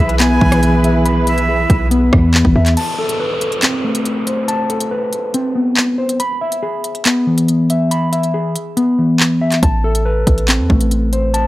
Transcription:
Already playing: E3 E4 G#4 B4 E5 B5
0.00 B1
0.09 closed hi-hat
0.20 B3 G#5, clap, closed hi-hat
0.41 B1 E3, kick
0.52 cross-stick, closed hi-hat
0.63 closed hi-hat
0.84 E5, closed hi-hat
1.06 B5, closed hi-hat
1.27 E5, closed hi-hat
1.38 closed hi-hat
1.48 G#4
1.70 B1, kick, closed hi-hat
1.91 B3, closed hi-hat
2.13 E2 E3, kick, cross-stick
2.34 clap
2.45 G#1, kick
2.56 E2 E5
2.66 clap, closed hi-hat
2.77 A5, closed hi-hat, crash, downlifter
2.99 A4
3.09 closed hi-hat
3.20 B4
3.41 closed hi-hat
3.52 closed hi-hat
3.63 C4, clap, closed hi-hat
3.84 A3
3.95 closed hi-hat
4.05 closed hi-hat
4.27 C5, closed hi-hat
4.48 A5, closed hi-hat
4.70 A4, closed hi-hat
4.80 closed hi-hat
4.91 B4
5.13 closed hi-hat
5.34 C4, closed hi-hat
5.55 B3
5.77 clap
5.98 C5
6.09 closed hi-hat
6.20 B5, closed hi-hat
6.41 E5
6.52 closed hi-hat
6.63 G#4
6.84 closed hi-hat
6.95 closed hi-hat
7.05 B3, clap, closed hi-hat
7.27 E3
7.38 closed hi-hat
7.48 closed hi-hat
7.70 E5, closed hi-hat
7.91 B5, closed hi-hat
8.12 E5, closed hi-hat
8.23 closed hi-hat
8.34 G#4
8.56 closed hi-hat
8.77 B3, closed hi-hat
8.98 E3
9.20 clap
9.41 E5
9.52 clap, closed hi-hat
9.63 A1 A5, kick, closed hi-hat
9.84 A4
9.95 closed hi-hat
10.05 B4
10.27 A1, kick, closed hi-hat
10.38 closed hi-hat
10.48 C4, clap, closed hi-hat
10.59 E2
10.70 A1 A3, kick
10.81 closed hi-hat
10.91 closed hi-hat
11.13 C5, closed hi-hat
11.34 A5, closed hi-hat

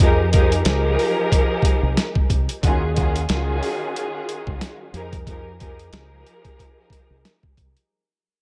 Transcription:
Already playing: F2
0.00 F3 D#4 G4 G#4 A#4, kick, closed hi-hat
0.31 F3 D#4 G4 G#4 A#4, kick, closed hi-hat
0.52 closed hi-hat
0.63 C#2 F3 D#4 G4 G#4 A#4, snare, closed hi-hat
0.99 open hi-hat
1.32 kick, closed hi-hat
1.62 kick, closed hi-hat
1.83 C2
1.97 snare, closed hi-hat
2.15 kick
2.30 C2, kick, closed hi-hat
2.49 closed hi-hat
2.63 D#2 D#3 C#4 F4 F#4 G#4, kick, closed hi-hat
2.94 D#3 C#4 F4 F#4 G#4, kick, closed hi-hat
3.16 closed hi-hat
3.28 C#2 D#3 C#4 F4 F#4 G#4, snare, closed hi-hat
3.63 open hi-hat
3.96 closed hi-hat
4.29 closed hi-hat
4.47 C#2, kick
4.61 snare, closed hi-hat
4.93 F2 F3 D#4 G4 G#4 A#4, closed hi-hat
5.12 kick, closed hi-hat
5.26 F3 D#4 G4 G#4 A#4, kick, closed hi-hat
5.58 F3 D#4 G4 G#4 A#4, kick, closed hi-hat
5.79 closed hi-hat
5.90 C#2 F3 D#4 G4 G#4 A#4, snare, closed hi-hat
6.26 closed hi-hat
6.45 kick, closed hi-hat
6.59 kick, closed hi-hat
6.90 kick, closed hi-hat
7.10 C2
7.25 snare, closed hi-hat
7.43 kick
7.57 C2, kick, closed hi-hat
7.77 closed hi-hat

